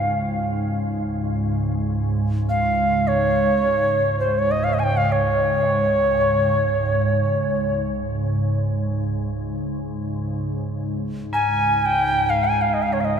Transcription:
0.00 10.47 C#2 medium
0.00 10.47 G#2 medium
0.00 1.75 C5 medium
0.00 0.47 F5 medium
2.49 3.09 F5 medium
3.08 4.19 C#5 medium
4.20 4.40 C5 medium
4.39 4.53 C#5 medium
4.51 4.65 D#5 medium
4.64 4.75 F5 medium
4.74 4.81 D#5 medium
4.79 4.85 G#5 medium
4.84 4.99 G5 medium
4.97 5.14 F5 medium
5.12 7.85 C#5 medium
10.48 13.20 C#2 medium
10.48 13.20 G#2 medium
11.33 13.20 A#4 soft
11.33 11.87 G#5 medium
11.86 12.31 G5 medium
12.30 12.46 F5 medium
12.44 12.63 G#5 medium
12.61 12.75 F5 medium
12.74 12.84 D#5 medium
12.83 12.94 F5 medium
12.93 13.02 C#5 medium
13.01 13.06 F5 medium
13.05 13.19 D#5 medium

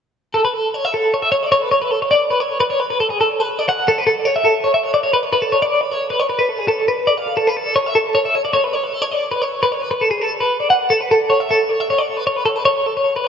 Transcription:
0.34 0.44 A4 medium
0.45 0.54 B4 medium
0.54 0.74 A4 medium
0.74 0.85 C#5 medium
0.85 0.94 E5 medium
0.94 1.13 A4 medium
1.14 1.22 C#5 medium
1.22 1.31 E5 medium
1.32 1.43 C#5 medium
1.43 1.51 D5 medium
1.52 1.62 C#5 medium
1.62 1.71 B4 medium
1.72 1.81 C#5 medium
1.82 1.91 B4 medium
1.91 2.01 A4 medium
2.02 2.11 C#5 medium
2.11 2.30 D5 medium
2.30 2.40 B4 medium
2.40 2.60 C#5 medium
2.60 2.70 B4 medium
2.70 2.80 C#5 medium
2.80 2.89 B4 medium
2.90 2.99 B4 medium
3.00 3.09 A4 medium
3.10 3.19 G#4 medium
3.21 3.40 A4 medium
3.40 3.59 B4 medium
3.59 3.68 D5 medium
3.69 3.88 F#5 medium
3.88 3.98 A4 medium
3.98 4.06 B4 medium
4.07 4.25 A4 medium
4.25 4.35 C#5 medium
4.36 4.45 E5 medium
4.45 4.65 A4 medium
4.64 4.74 C#5 medium
4.74 4.84 E5 medium
4.84 4.94 C#5 medium
4.94 5.03 D5 medium
5.03 5.13 C#5 medium
5.13 5.23 B4 medium
5.23 5.32 C#5 medium
5.33 5.43 B4 medium
5.42 5.52 A4 medium
5.52 5.62 C#5 medium
5.62 5.81 D5 medium
5.81 5.92 B4 medium
5.92 6.10 C#5 medium
6.10 6.20 B4 medium
6.20 6.29 C#5 medium
6.30 6.38 B4 medium
6.39 6.49 B4 medium
6.49 6.59 A4 medium
6.59 6.68 G#4 medium
6.68 6.88 A4 medium
6.88 7.09 B4 medium
7.07 7.18 D5 medium
7.18 7.38 F5 medium
7.37 7.47 A4 medium
7.47 7.57 B4 medium
7.57 7.77 A4 medium
7.76 7.86 C#5 medium
7.86 7.97 E5 medium
7.95 8.16 A4 medium
8.15 8.25 C#5 medium
8.25 8.35 E5 medium
8.35 8.44 C#5 medium
8.45 8.53 D5 medium
8.53 8.64 C#5 medium
8.64 8.73 B4 medium
8.73 8.84 C#5 medium
8.84 8.93 B4 medium
8.93 9.02 A4 medium
9.02 9.12 C#5 medium
9.12 9.31 D5 medium
9.32 9.42 B4 medium
9.42 9.62 C#5 medium
9.63 9.72 B4 medium
9.72 9.82 C#5 medium
9.82 9.90 B4 medium
9.91 10.02 B4 medium
10.01 10.10 A4 medium
10.11 10.21 G#4 medium
10.21 10.42 A4 medium
10.40 10.60 B4 medium
10.60 10.70 D5 medium
10.70 10.91 F#5 medium
10.90 11.01 A4 medium
11.01 11.11 B4 medium
11.11 11.31 A4 medium
11.30 11.40 C#5 medium
11.40 11.50 E5 medium
11.51 11.70 A4 medium
11.69 11.80 C#5 medium
11.80 11.90 E5 medium
11.90 11.99 C#5 medium
11.99 12.07 D5 medium
12.07 12.17 C#5 medium
12.17 12.26 B4 medium
12.27 12.36 C#5 medium
12.36 12.45 B4 medium
12.46 12.56 A4 medium
12.56 12.65 B4 medium
12.65 12.86 C#5 medium
12.86 12.97 A4 medium
12.97 13.16 C#5 medium
13.16 13.27 B4 medium

